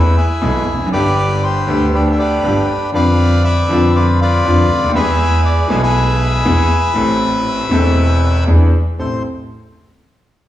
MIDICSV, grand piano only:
0, 0, Header, 1, 2, 480
1, 0, Start_track
1, 0, Key_signature, 0, "minor"
1, 0, Tempo, 504626
1, 881, Time_signature, 4, 2, 24, 8
1, 9971, End_track
2, 0, Start_track
2, 0, Title_t, "Grand piano"
2, 0, Program_c, 0, 0
2, 0, Note_on_c, 0, 40, 94
2, 0, Note_on_c, 0, 52, 85
2, 0, Note_on_c, 0, 56, 69
2, 0, Note_on_c, 0, 59, 73
2, 0, Note_on_c, 0, 68, 82
2, 117, Note_off_c, 0, 56, 0
2, 118, Note_off_c, 0, 40, 0
2, 118, Note_off_c, 0, 52, 0
2, 119, Note_off_c, 0, 68, 0
2, 121, Note_off_c, 0, 59, 0
2, 393, Note_on_c, 0, 52, 79
2, 398, Note_on_c, 0, 47, 90
2, 399, Note_on_c, 0, 59, 69
2, 400, Note_on_c, 0, 56, 69
2, 401, Note_on_c, 0, 35, 84
2, 405, Note_on_c, 0, 68, 88
2, 599, Note_off_c, 0, 52, 0
2, 601, Note_off_c, 0, 47, 0
2, 602, Note_off_c, 0, 59, 0
2, 603, Note_off_c, 0, 35, 0
2, 603, Note_off_c, 0, 56, 0
2, 605, Note_off_c, 0, 68, 0
2, 707, Note_on_c, 0, 40, 53
2, 761, Note_on_c, 0, 41, 70
2, 764, Note_off_c, 0, 40, 0
2, 821, Note_off_c, 0, 41, 0
2, 822, Note_on_c, 0, 42, 78
2, 868, Note_on_c, 0, 50, 73
2, 881, Note_on_c, 0, 55, 73
2, 882, Note_off_c, 0, 42, 0
2, 888, Note_on_c, 0, 31, 90
2, 889, Note_on_c, 0, 43, 89
2, 895, Note_on_c, 0, 59, 68
2, 907, Note_on_c, 0, 67, 81
2, 1562, Note_off_c, 0, 50, 0
2, 1568, Note_off_c, 0, 55, 0
2, 1572, Note_off_c, 0, 31, 0
2, 1573, Note_off_c, 0, 43, 0
2, 1576, Note_off_c, 0, 59, 0
2, 1581, Note_off_c, 0, 67, 0
2, 1588, Note_on_c, 0, 50, 93
2, 1597, Note_on_c, 0, 55, 73
2, 1603, Note_on_c, 0, 38, 97
2, 1609, Note_on_c, 0, 59, 77
2, 1620, Note_on_c, 0, 67, 82
2, 2284, Note_off_c, 0, 55, 0
2, 2286, Note_off_c, 0, 38, 0
2, 2287, Note_off_c, 0, 50, 0
2, 2290, Note_off_c, 0, 59, 0
2, 2295, Note_off_c, 0, 67, 0
2, 2314, Note_on_c, 0, 50, 82
2, 2319, Note_on_c, 0, 31, 84
2, 2320, Note_on_c, 0, 43, 94
2, 2321, Note_on_c, 0, 55, 69
2, 2322, Note_on_c, 0, 59, 75
2, 2323, Note_on_c, 0, 67, 82
2, 2520, Note_off_c, 0, 50, 0
2, 2522, Note_off_c, 0, 31, 0
2, 2523, Note_off_c, 0, 43, 0
2, 2523, Note_off_c, 0, 55, 0
2, 2524, Note_off_c, 0, 59, 0
2, 2525, Note_off_c, 0, 67, 0
2, 2779, Note_on_c, 0, 50, 74
2, 2793, Note_on_c, 0, 53, 90
2, 2796, Note_on_c, 0, 41, 90
2, 2806, Note_on_c, 0, 59, 71
2, 2818, Note_on_c, 0, 65, 84
2, 3473, Note_off_c, 0, 50, 0
2, 3481, Note_off_c, 0, 41, 0
2, 3481, Note_off_c, 0, 53, 0
2, 3486, Note_off_c, 0, 59, 0
2, 3492, Note_off_c, 0, 65, 0
2, 3504, Note_on_c, 0, 50, 84
2, 3514, Note_on_c, 0, 53, 98
2, 3522, Note_on_c, 0, 41, 104
2, 3528, Note_on_c, 0, 59, 75
2, 3540, Note_on_c, 0, 65, 90
2, 4191, Note_off_c, 0, 50, 0
2, 4199, Note_off_c, 0, 53, 0
2, 4200, Note_off_c, 0, 41, 0
2, 4203, Note_off_c, 0, 59, 0
2, 4209, Note_off_c, 0, 65, 0
2, 4231, Note_on_c, 0, 50, 85
2, 4236, Note_on_c, 0, 41, 90
2, 4236, Note_on_c, 0, 53, 96
2, 4237, Note_on_c, 0, 59, 75
2, 4238, Note_on_c, 0, 65, 83
2, 4432, Note_off_c, 0, 50, 0
2, 4435, Note_off_c, 0, 41, 0
2, 4435, Note_off_c, 0, 53, 0
2, 4435, Note_off_c, 0, 59, 0
2, 4436, Note_off_c, 0, 65, 0
2, 4540, Note_on_c, 0, 37, 59
2, 4594, Note_off_c, 0, 37, 0
2, 4601, Note_on_c, 0, 38, 73
2, 4650, Note_on_c, 0, 39, 88
2, 4655, Note_off_c, 0, 38, 0
2, 4696, Note_on_c, 0, 52, 80
2, 4709, Note_off_c, 0, 39, 0
2, 4709, Note_on_c, 0, 56, 73
2, 4710, Note_off_c, 0, 52, 0
2, 4715, Note_on_c, 0, 40, 95
2, 4717, Note_on_c, 0, 52, 92
2, 4721, Note_on_c, 0, 59, 71
2, 4736, Note_on_c, 0, 68, 90
2, 5384, Note_off_c, 0, 56, 0
2, 5387, Note_off_c, 0, 40, 0
2, 5387, Note_off_c, 0, 52, 0
2, 5389, Note_off_c, 0, 59, 0
2, 5397, Note_off_c, 0, 68, 0
2, 5403, Note_on_c, 0, 52, 87
2, 5419, Note_on_c, 0, 56, 83
2, 5423, Note_on_c, 0, 47, 104
2, 5425, Note_on_c, 0, 35, 95
2, 5430, Note_on_c, 0, 59, 81
2, 5443, Note_on_c, 0, 68, 92
2, 6092, Note_off_c, 0, 52, 0
2, 6100, Note_off_c, 0, 56, 0
2, 6101, Note_off_c, 0, 47, 0
2, 6103, Note_off_c, 0, 35, 0
2, 6105, Note_off_c, 0, 59, 0
2, 6111, Note_off_c, 0, 68, 0
2, 6139, Note_on_c, 0, 52, 104
2, 6142, Note_on_c, 0, 40, 98
2, 6142, Note_on_c, 0, 56, 73
2, 6142, Note_on_c, 0, 59, 77
2, 6145, Note_on_c, 0, 68, 91
2, 6339, Note_off_c, 0, 40, 0
2, 6339, Note_off_c, 0, 56, 0
2, 6339, Note_off_c, 0, 59, 0
2, 6340, Note_off_c, 0, 68, 0
2, 6341, Note_off_c, 0, 52, 0
2, 6598, Note_on_c, 0, 52, 77
2, 6609, Note_on_c, 0, 57, 77
2, 6614, Note_on_c, 0, 45, 89
2, 6615, Note_on_c, 0, 33, 98
2, 6619, Note_on_c, 0, 60, 74
2, 6633, Note_on_c, 0, 69, 88
2, 7290, Note_off_c, 0, 52, 0
2, 7296, Note_off_c, 0, 57, 0
2, 7298, Note_off_c, 0, 33, 0
2, 7298, Note_off_c, 0, 45, 0
2, 7300, Note_off_c, 0, 60, 0
2, 7308, Note_off_c, 0, 69, 0
2, 7317, Note_on_c, 0, 52, 79
2, 7330, Note_on_c, 0, 57, 70
2, 7336, Note_on_c, 0, 40, 97
2, 7339, Note_on_c, 0, 28, 96
2, 7341, Note_on_c, 0, 60, 74
2, 7357, Note_on_c, 0, 69, 94
2, 8019, Note_off_c, 0, 52, 0
2, 8026, Note_off_c, 0, 57, 0
2, 8029, Note_off_c, 0, 40, 0
2, 8030, Note_off_c, 0, 28, 0
2, 8031, Note_off_c, 0, 60, 0
2, 8039, Note_off_c, 0, 69, 0
2, 8061, Note_on_c, 0, 52, 82
2, 8063, Note_on_c, 0, 40, 88
2, 8064, Note_on_c, 0, 59, 66
2, 8067, Note_on_c, 0, 62, 73
2, 8068, Note_on_c, 0, 68, 81
2, 8268, Note_off_c, 0, 52, 0
2, 8269, Note_off_c, 0, 40, 0
2, 8269, Note_off_c, 0, 59, 0
2, 8270, Note_off_c, 0, 62, 0
2, 8271, Note_off_c, 0, 68, 0
2, 8555, Note_on_c, 0, 33, 57
2, 8555, Note_on_c, 0, 60, 50
2, 8556, Note_on_c, 0, 69, 62
2, 8557, Note_on_c, 0, 64, 51
2, 8755, Note_off_c, 0, 33, 0
2, 8755, Note_off_c, 0, 60, 0
2, 8756, Note_off_c, 0, 64, 0
2, 8756, Note_off_c, 0, 69, 0
2, 9971, End_track
0, 0, End_of_file